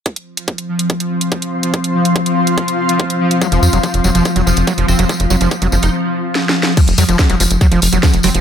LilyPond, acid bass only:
\new Staff \with { instrumentName = "Acid bass" } { \clef bass \time 4/4 \tempo 4 = 143 r1 | r1 | ges16 f16 r16 ges16 f16 r16 ges16 f16 r16 ges16 f16 r16 ges16 f16 r16 ges16 | f16 r16 ges16 f16 r16 ges16 f16 r2 r16 |
f16 r16 ges16 f16 r16 ges16 f16 r16 ges16 f16 r16 ges16 f16 r16 ges16 f16 | }